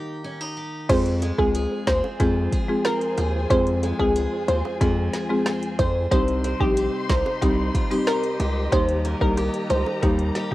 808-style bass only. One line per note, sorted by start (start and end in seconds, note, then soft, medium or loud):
0.90 1.32 F2 loud
1.39 1.67 C#2 medium
1.87 2.02 D#2 medium
2.20 2.48 F2 loud
3.18 3.46 D#2 medium
3.50 3.93 F2 loud
3.99 4.28 C#2 medium
4.48 4.63 D#2 medium
4.81 5.09 F2 loud
5.79 6.07 F2 medium
6.11 6.54 C2 loud
6.60 6.89 A#1 medium
7.09 7.24 C2 loud
7.42 7.70 C2 loud
8.40 8.68 C#2 loud
8.72 9.15 D#2 loud
9.21 9.50 C2 loud
9.70 9.84 C#2 loud
10.03 10.31 D#2 loud